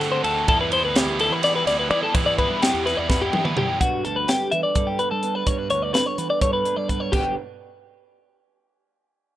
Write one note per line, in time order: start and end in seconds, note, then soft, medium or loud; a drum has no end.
0.00 0.21 D3 loud
0.00 0.23 A3 medium
0.00 0.24 C4 medium
0.00 0.24 F#4 medium
0.00 0.11 A4 medium
0.00 snare soft
0.00 ride medium
0.12 0.24 C5 medium
0.23 0.45 D2 medium
0.23 0.46 D3 medium
0.23 0.47 A3 medium
0.23 0.47 C4 medium
0.23 0.47 F#4 medium
0.23 0.47 A4 medium
0.23 ride medium
0.48 0.84 E2 loud
0.48 0.95 E3 medium
0.48 0.73 G3 loud
0.48 0.72 B3 loud
0.48 0.71 E4 loud
0.48 0.60 A4 loud
0.48 kick loud
0.48 ride loud
0.61 0.72 B4 medium
0.72 0.95 G3 medium
0.72 0.96 B3 medium
0.72 0.97 E4 medium
0.72 0.84 C5 medium
0.72 ride medium
0.84 1.05 D2 medium
0.84 0.97 B4 medium
0.95 1.43 E3 loud
0.95 1.21 G3 loud
0.95 1.21 B3 loud
0.95 1.19 E4 loud
0.95 1.20 G4 medium
0.95 snare loud
0.95 ride loud
1.07 1.28 D2 loud
1.19 1.68 G3 medium
1.19 1.67 B3 medium
1.19 1.65 E4 medium
1.19 1.32 A4 medium
1.19 ride medium
1.31 1.62 E3 loud
1.31 1.44 B4 medium
1.43 1.55 D5 medium
1.43 snare soft
1.43 ride loud
1.55 1.67 B4 medium
1.66 1.91 D2 loud
1.66 1.92 G3 medium
1.66 1.92 B3 medium
1.66 1.92 E4 medium
1.66 1.79 D5 medium
1.66 snare soft
1.66 ride medium
1.79 1.90 B4 medium
1.90 2.01 E3 medium
1.90 2.13 E3 medium
1.90 2.14 G3 medium
1.90 2.15 B3 medium
1.90 2.15 E4 medium
1.90 2.02 D5 medium
1.90 ride medium
2.03 2.14 A4 medium
2.14 2.46 E3 loud
2.14 2.61 E3 loud
2.14 2.39 G3 loud
2.14 2.38 B3 loud
2.14 2.37 E4 loud
2.14 2.26 B4 medium
2.14 kick loud
2.14 ride loud
2.26 2.38 D5 medium
2.38 2.61 G3 medium
2.38 2.62 B3 medium
2.38 2.63 E4 medium
2.38 2.62 B4 medium
2.38 kick medium
2.38 ride medium
2.50 2.71 G2 medium
2.62 3.09 E3 loud
2.62 2.86 G3 loud
2.62 2.85 B3 loud
2.62 2.84 E4 loud
2.62 2.86 G4 medium
2.62 snare loud
2.62 ride loud
2.74 2.95 E2 medium
2.85 3.33 G3 medium
2.85 3.32 B3 medium
2.85 3.31 E4 medium
2.85 2.97 B4 medium
2.85 snare soft
2.85 ride medium
2.97 3.29 E2 medium
2.97 3.09 D5 medium
3.09 3.21 B4 medium
3.09 kick loud
3.09 snare medium
3.22 3.45 G4 medium
3.32 3.55 E3 loud
3.32 3.56 G3 medium
3.32 3.56 B3 medium
3.32 3.57 E4 medium
3.32 high tom medium
3.45 3.57 B4 medium
3.45 mid tom medium
3.56 3.78 F#2 medium
3.56 3.79 E3 medium
3.56 3.79 G3 medium
3.56 3.79 B3 medium
3.56 3.80 E4 medium
3.56 3.80 G4 medium
3.56 mid tom loud
3.80 5.46 G2 medium
3.80 4.02 G2 loud
3.80 4.26 D3 medium
3.80 4.05 B3 medium
3.80 4.99 D4 medium
3.80 4.05 F#4 medium
3.80 4.76 F#4 medium
3.80 kick loud
3.80 closed hi-hat medium
4.05 4.26 D2 medium
4.05 4.52 B3 medium
4.05 4.16 A4 medium
4.05 closed hi-hat medium
4.16 4.28 B4 medium
4.27 5.92 D3 medium
4.27 4.52 G4 medium
4.27 snare loud
4.27 closed hi-hat medium
4.51 4.63 E3 medium
4.51 4.99 B3 medium
4.51 4.63 E5 medium
4.51 closed hi-hat medium
4.63 4.87 D5 medium
4.75 4.96 G3 medium
4.75 5.44 A4 medium
4.75 kick loud
4.75 closed hi-hat medium
4.87 4.99 G4 medium
4.99 5.11 B3 medium
4.99 5.11 B4 medium
4.99 closed hi-hat medium
5.11 5.43 G3 medium
5.11 5.47 D4 medium
5.11 5.35 A4 medium
5.23 5.70 B3 medium
5.23 closed hi-hat medium
5.35 5.47 B4 medium
5.46 7.10 G2 medium
5.46 5.68 G2 loud
5.46 5.59 C#5 medium
5.46 kick loud
5.46 closed hi-hat medium
5.59 5.70 B4 medium
5.70 5.92 D2 medium
5.70 6.17 B3 medium
5.70 5.82 C#5 medium
5.70 closed hi-hat medium
5.82 5.94 D5 medium
5.93 7.12 D3 medium
5.93 6.06 B4 medium
5.93 snare loud
5.93 closed hi-hat medium
6.06 6.18 C#5 medium
6.18 6.29 E3 medium
6.18 6.88 B3 medium
6.18 6.30 B4 medium
6.18 closed hi-hat medium
6.30 6.42 D5 medium
6.41 6.63 G3 medium
6.41 7.10 A4 medium
6.41 6.53 C#5 medium
6.41 kick loud
6.41 closed hi-hat medium
6.53 6.76 B4 medium
6.65 7.10 D4 medium
6.65 closed hi-hat medium
6.76 7.08 G3 medium
6.76 6.89 D5 medium
6.89 7.10 B3 medium
6.89 7.00 B4 medium
6.89 kick medium
6.89 closed hi-hat medium
7.00 7.13 C#5 medium
7.12 7.35 G1 medium
7.12 7.34 G2 medium
7.12 7.35 D3 medium
7.12 7.35 B3 medium
7.12 7.35 D4 medium
7.12 7.36 F#4 medium
7.12 7.35 G4 medium
7.12 kick loud
7.12 crash medium